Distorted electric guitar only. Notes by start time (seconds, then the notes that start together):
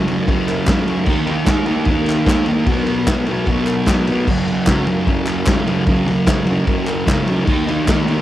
Already playing: F#2 C#3
0.07 F#3
0.11 C#3
0.27 F#2 C#3
0.31 F#3
0.66 F#2 C#3
0.71 F#3
0.85 C#3 F#3
1.06 D#3 A#3 D#4
1.26 D#4
1.31 A#3
1.46 D#3 A#3
1.51 D#4
1.67 A#3 D#4
1.86 D#3 A#3
1.91 D#4
2.27 D#3 A#3
2.31 D#4
2.48 A#3 D#4
2.67 B2 F#3
2.71 B3
2.87 B3
2.92 F#3
3.08 B2 F#3
3.12 B3
3.28 B3
3.32 F#3
3.47 B2 F#3
3.52 B3
3.88 B2 F#3
3.92 B3
4.07 F#3 B3
4.29 F#2 C#3 F#3
4.47 F#3
4.51 C#3
4.66 F#2 C#3
4.71 F#3
4.87 F#3
4.91 C#3
5.06 F#2 C#3
5.10 F#3
5.48 F#2 C#3
5.53 F#3
5.66 F#3
5.71 C#3
5.85 F#2 C#3
5.90 F#3
6.07 F#3
6.11 C#3
6.27 F#2 C#3
6.31 F#3
6.45 F#3
6.50 C#3
6.66 F#2 C#3
6.70 F#3
7.06 F#2 C#3
7.10 F#3
7.26 F#3
7.30 C#3
7.45 D#3 A#3
7.50 D#4
7.67 A#3 D#4
7.87 D#3 A#3
7.91 D#4
8.07 D#4
8.12 A#3